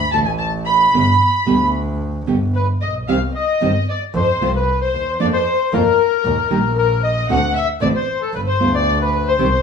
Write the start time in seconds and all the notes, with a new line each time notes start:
Already playing: B5
0.12 A1 D3 A3 D4 F#4 A5
0.25 G#5
0.38 A5
0.65 B5
0.93 G1 B2 D3 G3 B3 G4
1.46 D2 B2 D3 G3 B3 G4
2.26 G1 B2 D3 G3 B3 G4
2.54 B4
2.81 A#1 D#5
3.08 C2 C3 D#3 G3 C4 G4 F5
3.35 D#5
3.61 G1 C3 D#3 G3 C4 G4
3.89 D5
4.14 F2 C5
4.41 C2 C3 F3 G#3 C4 F4
4.54 B4
4.81 C5
4.94 D#2
5.20 F2 F3 A#3 D4 F4 D5
5.33 C5
5.72 F2 F3 A#3 D4 F4 A#4
6.25 D#2
6.50 A#1 D#3 G3 A#3 D#4 G4
6.77 A#4
7.03 D#5
7.29 D2 D3 A3 C4 F#4 F#5
7.55 E5
7.81 A1 D3 A3 C4 F#4 D5
7.94 C5
8.20 A4
8.33 G1 B4
8.47 C5
8.60 D2 G3 B3 F4
8.73 D5
9.00 B4
9.27 C5
9.38 C2 C3 D#3 G3 C4 G4